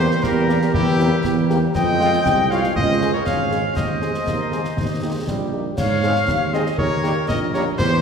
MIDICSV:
0, 0, Header, 1, 8, 480
1, 0, Start_track
1, 0, Key_signature, -4, "major"
1, 0, Tempo, 503356
1, 711, Time_signature, 2, 2, 24, 8
1, 7644, End_track
2, 0, Start_track
2, 0, Title_t, "Cornet"
2, 0, Program_c, 0, 56
2, 0, Note_on_c, 0, 72, 122
2, 221, Note_on_c, 0, 70, 120
2, 235, Note_off_c, 0, 72, 0
2, 702, Note_off_c, 0, 70, 0
2, 708, Note_on_c, 0, 67, 127
2, 1391, Note_off_c, 0, 67, 0
2, 1667, Note_on_c, 0, 79, 127
2, 2392, Note_on_c, 0, 77, 108
2, 2406, Note_off_c, 0, 79, 0
2, 2623, Note_off_c, 0, 77, 0
2, 2629, Note_on_c, 0, 75, 127
2, 2965, Note_off_c, 0, 75, 0
2, 2993, Note_on_c, 0, 73, 99
2, 3103, Note_off_c, 0, 73, 0
2, 3108, Note_on_c, 0, 77, 108
2, 3556, Note_off_c, 0, 77, 0
2, 3585, Note_on_c, 0, 75, 107
2, 5230, Note_off_c, 0, 75, 0
2, 5502, Note_on_c, 0, 77, 124
2, 6233, Note_on_c, 0, 75, 101
2, 6247, Note_off_c, 0, 77, 0
2, 6465, Note_off_c, 0, 75, 0
2, 6470, Note_on_c, 0, 73, 122
2, 6918, Note_off_c, 0, 73, 0
2, 6941, Note_on_c, 0, 75, 111
2, 7052, Note_off_c, 0, 75, 0
2, 7189, Note_on_c, 0, 73, 110
2, 7297, Note_off_c, 0, 73, 0
2, 7420, Note_on_c, 0, 72, 127
2, 7644, Note_off_c, 0, 72, 0
2, 7644, End_track
3, 0, Start_track
3, 0, Title_t, "Flute section"
3, 0, Program_c, 1, 73
3, 0, Note_on_c, 1, 72, 109
3, 193, Note_off_c, 1, 72, 0
3, 220, Note_on_c, 1, 70, 102
3, 672, Note_off_c, 1, 70, 0
3, 707, Note_on_c, 1, 67, 110
3, 1428, Note_off_c, 1, 67, 0
3, 1661, Note_on_c, 1, 79, 127
3, 2348, Note_off_c, 1, 79, 0
3, 2386, Note_on_c, 1, 77, 109
3, 2622, Note_on_c, 1, 75, 106
3, 2628, Note_off_c, 1, 77, 0
3, 2961, Note_off_c, 1, 75, 0
3, 2988, Note_on_c, 1, 73, 80
3, 3043, Note_off_c, 1, 73, 0
3, 3104, Note_on_c, 1, 77, 100
3, 3553, Note_off_c, 1, 77, 0
3, 3596, Note_on_c, 1, 75, 97
3, 5236, Note_off_c, 1, 75, 0
3, 5502, Note_on_c, 1, 77, 124
3, 6188, Note_off_c, 1, 77, 0
3, 6228, Note_on_c, 1, 75, 90
3, 6453, Note_off_c, 1, 75, 0
3, 6469, Note_on_c, 1, 73, 105
3, 6917, Note_off_c, 1, 73, 0
3, 6943, Note_on_c, 1, 75, 106
3, 7001, Note_off_c, 1, 75, 0
3, 7176, Note_on_c, 1, 73, 102
3, 7233, Note_off_c, 1, 73, 0
3, 7424, Note_on_c, 1, 72, 111
3, 7644, Note_off_c, 1, 72, 0
3, 7644, End_track
4, 0, Start_track
4, 0, Title_t, "Woodwind section"
4, 0, Program_c, 2, 71
4, 0, Note_on_c, 2, 67, 106
4, 196, Note_off_c, 2, 67, 0
4, 222, Note_on_c, 2, 67, 106
4, 672, Note_off_c, 2, 67, 0
4, 707, Note_on_c, 2, 64, 112
4, 1391, Note_off_c, 2, 64, 0
4, 1671, Note_on_c, 2, 75, 127
4, 2353, Note_off_c, 2, 75, 0
4, 2394, Note_on_c, 2, 73, 102
4, 2632, Note_off_c, 2, 73, 0
4, 2634, Note_on_c, 2, 72, 112
4, 2992, Note_off_c, 2, 72, 0
4, 2999, Note_on_c, 2, 70, 82
4, 3107, Note_off_c, 2, 70, 0
4, 3114, Note_on_c, 2, 73, 97
4, 3559, Note_off_c, 2, 73, 0
4, 3590, Note_on_c, 2, 72, 96
4, 5271, Note_off_c, 2, 72, 0
4, 5505, Note_on_c, 2, 73, 126
4, 6190, Note_off_c, 2, 73, 0
4, 6226, Note_on_c, 2, 72, 76
4, 6335, Note_off_c, 2, 72, 0
4, 6459, Note_on_c, 2, 70, 105
4, 6912, Note_off_c, 2, 70, 0
4, 6944, Note_on_c, 2, 70, 100
4, 7171, Note_off_c, 2, 70, 0
4, 7185, Note_on_c, 2, 70, 98
4, 7412, Note_off_c, 2, 70, 0
4, 7424, Note_on_c, 2, 67, 111
4, 7644, Note_off_c, 2, 67, 0
4, 7644, End_track
5, 0, Start_track
5, 0, Title_t, "French horn section"
5, 0, Program_c, 3, 60
5, 464, Note_on_c, 3, 58, 86
5, 465, Note_on_c, 3, 67, 84
5, 466, Note_on_c, 3, 60, 79
5, 552, Note_off_c, 3, 58, 0
5, 553, Note_off_c, 3, 60, 0
5, 553, Note_off_c, 3, 67, 0
5, 949, Note_on_c, 3, 58, 89
5, 949, Note_on_c, 3, 60, 90
5, 949, Note_on_c, 3, 67, 88
5, 1035, Note_off_c, 3, 60, 0
5, 1036, Note_off_c, 3, 58, 0
5, 1036, Note_off_c, 3, 67, 0
5, 1425, Note_on_c, 3, 67, 86
5, 1426, Note_on_c, 3, 60, 89
5, 1428, Note_on_c, 3, 58, 90
5, 1513, Note_off_c, 3, 60, 0
5, 1513, Note_off_c, 3, 67, 0
5, 1515, Note_off_c, 3, 58, 0
5, 1909, Note_on_c, 3, 65, 92
5, 1910, Note_on_c, 3, 56, 88
5, 1912, Note_on_c, 3, 60, 87
5, 1996, Note_off_c, 3, 65, 0
5, 1997, Note_off_c, 3, 56, 0
5, 1998, Note_off_c, 3, 60, 0
5, 2390, Note_on_c, 3, 65, 78
5, 2391, Note_on_c, 3, 56, 81
5, 2391, Note_on_c, 3, 60, 83
5, 2476, Note_off_c, 3, 65, 0
5, 2478, Note_off_c, 3, 56, 0
5, 2478, Note_off_c, 3, 60, 0
5, 2867, Note_on_c, 3, 56, 75
5, 2870, Note_on_c, 3, 61, 81
5, 2870, Note_on_c, 3, 68, 78
5, 2955, Note_off_c, 3, 56, 0
5, 2956, Note_off_c, 3, 61, 0
5, 2957, Note_off_c, 3, 68, 0
5, 3343, Note_on_c, 3, 56, 64
5, 3345, Note_on_c, 3, 61, 68
5, 3345, Note_on_c, 3, 68, 68
5, 3431, Note_off_c, 3, 56, 0
5, 3433, Note_off_c, 3, 61, 0
5, 3433, Note_off_c, 3, 68, 0
5, 3826, Note_on_c, 3, 56, 69
5, 3826, Note_on_c, 3, 60, 65
5, 3826, Note_on_c, 3, 68, 68
5, 3913, Note_off_c, 3, 56, 0
5, 3914, Note_off_c, 3, 60, 0
5, 3914, Note_off_c, 3, 68, 0
5, 4304, Note_on_c, 3, 60, 62
5, 4307, Note_on_c, 3, 56, 62
5, 4307, Note_on_c, 3, 68, 64
5, 4392, Note_off_c, 3, 60, 0
5, 4394, Note_off_c, 3, 56, 0
5, 4394, Note_off_c, 3, 68, 0
5, 4792, Note_on_c, 3, 58, 60
5, 4792, Note_on_c, 3, 67, 64
5, 4793, Note_on_c, 3, 63, 63
5, 4878, Note_off_c, 3, 58, 0
5, 4878, Note_off_c, 3, 67, 0
5, 4879, Note_off_c, 3, 63, 0
5, 5273, Note_on_c, 3, 58, 61
5, 5273, Note_on_c, 3, 63, 63
5, 5275, Note_on_c, 3, 67, 60
5, 5359, Note_off_c, 3, 58, 0
5, 5359, Note_off_c, 3, 63, 0
5, 5360, Note_off_c, 3, 67, 0
5, 5753, Note_on_c, 3, 68, 77
5, 5754, Note_on_c, 3, 60, 73
5, 5755, Note_on_c, 3, 63, 75
5, 5839, Note_off_c, 3, 68, 0
5, 5840, Note_off_c, 3, 60, 0
5, 5841, Note_off_c, 3, 63, 0
5, 6226, Note_on_c, 3, 63, 73
5, 6227, Note_on_c, 3, 60, 75
5, 6229, Note_on_c, 3, 68, 74
5, 6314, Note_off_c, 3, 60, 0
5, 6314, Note_off_c, 3, 63, 0
5, 6316, Note_off_c, 3, 68, 0
5, 6705, Note_on_c, 3, 63, 73
5, 6705, Note_on_c, 3, 67, 83
5, 6706, Note_on_c, 3, 58, 76
5, 6793, Note_off_c, 3, 63, 0
5, 6793, Note_off_c, 3, 67, 0
5, 6794, Note_off_c, 3, 58, 0
5, 7185, Note_on_c, 3, 67, 75
5, 7186, Note_on_c, 3, 63, 75
5, 7188, Note_on_c, 3, 58, 78
5, 7273, Note_off_c, 3, 63, 0
5, 7273, Note_off_c, 3, 67, 0
5, 7275, Note_off_c, 3, 58, 0
5, 7644, End_track
6, 0, Start_track
6, 0, Title_t, "Trombone section"
6, 0, Program_c, 4, 61
6, 0, Note_on_c, 4, 55, 89
6, 0, Note_on_c, 4, 58, 90
6, 1629, Note_off_c, 4, 55, 0
6, 1630, Note_off_c, 4, 58, 0
6, 1666, Note_on_c, 4, 56, 98
6, 1667, Note_on_c, 4, 60, 99
6, 2591, Note_off_c, 4, 60, 0
6, 2637, Note_on_c, 4, 61, 87
6, 3550, Note_off_c, 4, 56, 0
6, 3590, Note_on_c, 4, 56, 70
6, 3594, Note_off_c, 4, 61, 0
6, 3597, Note_on_c, 4, 60, 72
6, 3992, Note_off_c, 4, 56, 0
6, 3996, Note_off_c, 4, 60, 0
6, 4070, Note_on_c, 4, 58, 95
6, 4753, Note_off_c, 4, 58, 0
6, 4787, Note_on_c, 4, 56, 74
6, 5028, Note_on_c, 4, 55, 75
6, 5029, Note_off_c, 4, 56, 0
6, 5476, Note_off_c, 4, 55, 0
6, 5750, Note_on_c, 4, 60, 90
6, 5752, Note_on_c, 4, 56, 84
6, 5834, Note_off_c, 4, 60, 0
6, 5835, Note_off_c, 4, 56, 0
6, 6229, Note_on_c, 4, 60, 82
6, 6230, Note_on_c, 4, 56, 87
6, 6313, Note_off_c, 4, 60, 0
6, 6314, Note_off_c, 4, 56, 0
6, 6706, Note_on_c, 4, 55, 88
6, 6713, Note_on_c, 4, 58, 93
6, 6792, Note_off_c, 4, 55, 0
6, 6796, Note_off_c, 4, 58, 0
6, 7189, Note_on_c, 4, 58, 96
6, 7193, Note_on_c, 4, 55, 86
6, 7274, Note_off_c, 4, 58, 0
6, 7277, Note_off_c, 4, 55, 0
6, 7644, End_track
7, 0, Start_track
7, 0, Title_t, "Tuba"
7, 0, Program_c, 5, 58
7, 0, Note_on_c, 5, 40, 96
7, 149, Note_off_c, 5, 40, 0
7, 225, Note_on_c, 5, 40, 99
7, 628, Note_off_c, 5, 40, 0
7, 705, Note_on_c, 5, 40, 113
7, 1108, Note_off_c, 5, 40, 0
7, 1187, Note_on_c, 5, 40, 108
7, 1589, Note_off_c, 5, 40, 0
7, 1668, Note_on_c, 5, 41, 114
7, 2069, Note_off_c, 5, 41, 0
7, 2145, Note_on_c, 5, 36, 99
7, 2511, Note_off_c, 5, 36, 0
7, 2632, Note_on_c, 5, 37, 107
7, 3031, Note_off_c, 5, 37, 0
7, 3111, Note_on_c, 5, 32, 86
7, 3511, Note_off_c, 5, 32, 0
7, 3588, Note_on_c, 5, 39, 81
7, 3989, Note_off_c, 5, 39, 0
7, 4066, Note_on_c, 5, 39, 79
7, 4468, Note_off_c, 5, 39, 0
7, 4552, Note_on_c, 5, 39, 77
7, 4951, Note_off_c, 5, 39, 0
7, 5028, Note_on_c, 5, 34, 76
7, 5429, Note_off_c, 5, 34, 0
7, 5510, Note_on_c, 5, 44, 93
7, 5911, Note_off_c, 5, 44, 0
7, 5992, Note_on_c, 5, 39, 87
7, 6392, Note_off_c, 5, 39, 0
7, 6469, Note_on_c, 5, 39, 98
7, 6870, Note_off_c, 5, 39, 0
7, 6955, Note_on_c, 5, 34, 94
7, 7353, Note_off_c, 5, 34, 0
7, 7433, Note_on_c, 5, 40, 104
7, 7644, Note_off_c, 5, 40, 0
7, 7644, End_track
8, 0, Start_track
8, 0, Title_t, "Drums"
8, 105, Note_on_c, 9, 38, 58
8, 201, Note_off_c, 9, 38, 0
8, 225, Note_on_c, 9, 35, 79
8, 225, Note_on_c, 9, 38, 77
8, 320, Note_off_c, 9, 35, 0
8, 320, Note_off_c, 9, 38, 0
8, 469, Note_on_c, 9, 38, 59
8, 564, Note_off_c, 9, 38, 0
8, 587, Note_on_c, 9, 38, 63
8, 682, Note_off_c, 9, 38, 0
8, 707, Note_on_c, 9, 35, 94
8, 802, Note_off_c, 9, 35, 0
8, 950, Note_on_c, 9, 38, 57
8, 1045, Note_off_c, 9, 38, 0
8, 1186, Note_on_c, 9, 35, 82
8, 1186, Note_on_c, 9, 38, 83
8, 1282, Note_off_c, 9, 35, 0
8, 1282, Note_off_c, 9, 38, 0
8, 1429, Note_on_c, 9, 38, 61
8, 1524, Note_off_c, 9, 38, 0
8, 1669, Note_on_c, 9, 35, 89
8, 1669, Note_on_c, 9, 38, 86
8, 1669, Note_on_c, 9, 49, 36
8, 1765, Note_off_c, 9, 35, 0
8, 1765, Note_off_c, 9, 38, 0
8, 1765, Note_off_c, 9, 49, 0
8, 1913, Note_on_c, 9, 38, 59
8, 2008, Note_off_c, 9, 38, 0
8, 2030, Note_on_c, 9, 38, 61
8, 2125, Note_off_c, 9, 38, 0
8, 2151, Note_on_c, 9, 35, 88
8, 2151, Note_on_c, 9, 38, 86
8, 2246, Note_off_c, 9, 35, 0
8, 2246, Note_off_c, 9, 38, 0
8, 2393, Note_on_c, 9, 38, 61
8, 2488, Note_off_c, 9, 38, 0
8, 2513, Note_on_c, 9, 38, 57
8, 2609, Note_off_c, 9, 38, 0
8, 2634, Note_on_c, 9, 35, 94
8, 2729, Note_off_c, 9, 35, 0
8, 2872, Note_on_c, 9, 38, 55
8, 2968, Note_off_c, 9, 38, 0
8, 3111, Note_on_c, 9, 35, 79
8, 3111, Note_on_c, 9, 38, 81
8, 3206, Note_off_c, 9, 35, 0
8, 3206, Note_off_c, 9, 38, 0
8, 3352, Note_on_c, 9, 38, 55
8, 3447, Note_off_c, 9, 38, 0
8, 3591, Note_on_c, 9, 35, 88
8, 3591, Note_on_c, 9, 38, 79
8, 3591, Note_on_c, 9, 49, 35
8, 3686, Note_off_c, 9, 35, 0
8, 3686, Note_off_c, 9, 38, 0
8, 3686, Note_off_c, 9, 49, 0
8, 3829, Note_on_c, 9, 38, 54
8, 3925, Note_off_c, 9, 38, 0
8, 3951, Note_on_c, 9, 38, 59
8, 4046, Note_off_c, 9, 38, 0
8, 4070, Note_on_c, 9, 35, 78
8, 4070, Note_on_c, 9, 38, 76
8, 4165, Note_off_c, 9, 35, 0
8, 4165, Note_off_c, 9, 38, 0
8, 4311, Note_on_c, 9, 38, 58
8, 4406, Note_off_c, 9, 38, 0
8, 4430, Note_on_c, 9, 38, 58
8, 4525, Note_off_c, 9, 38, 0
8, 4550, Note_on_c, 9, 35, 85
8, 4550, Note_on_c, 9, 38, 68
8, 4645, Note_off_c, 9, 35, 0
8, 4645, Note_off_c, 9, 38, 0
8, 5031, Note_on_c, 9, 35, 80
8, 5031, Note_on_c, 9, 38, 77
8, 5126, Note_off_c, 9, 35, 0
8, 5126, Note_off_c, 9, 38, 0
8, 5509, Note_on_c, 9, 35, 84
8, 5509, Note_on_c, 9, 38, 82
8, 5509, Note_on_c, 9, 49, 58
8, 5604, Note_off_c, 9, 35, 0
8, 5604, Note_off_c, 9, 38, 0
8, 5604, Note_off_c, 9, 49, 0
8, 5751, Note_on_c, 9, 38, 57
8, 5847, Note_off_c, 9, 38, 0
8, 5871, Note_on_c, 9, 38, 56
8, 5967, Note_off_c, 9, 38, 0
8, 5990, Note_on_c, 9, 35, 83
8, 5990, Note_on_c, 9, 38, 85
8, 6085, Note_off_c, 9, 35, 0
8, 6085, Note_off_c, 9, 38, 0
8, 6230, Note_on_c, 9, 38, 58
8, 6325, Note_off_c, 9, 38, 0
8, 6351, Note_on_c, 9, 38, 56
8, 6446, Note_off_c, 9, 38, 0
8, 6468, Note_on_c, 9, 35, 90
8, 6563, Note_off_c, 9, 35, 0
8, 6710, Note_on_c, 9, 38, 55
8, 6806, Note_off_c, 9, 38, 0
8, 6950, Note_on_c, 9, 35, 84
8, 6950, Note_on_c, 9, 38, 85
8, 7045, Note_off_c, 9, 35, 0
8, 7045, Note_off_c, 9, 38, 0
8, 7189, Note_on_c, 9, 38, 58
8, 7285, Note_off_c, 9, 38, 0
8, 7428, Note_on_c, 9, 35, 98
8, 7428, Note_on_c, 9, 38, 87
8, 7428, Note_on_c, 9, 49, 36
8, 7523, Note_off_c, 9, 35, 0
8, 7523, Note_off_c, 9, 38, 0
8, 7523, Note_off_c, 9, 49, 0
8, 7644, End_track
0, 0, End_of_file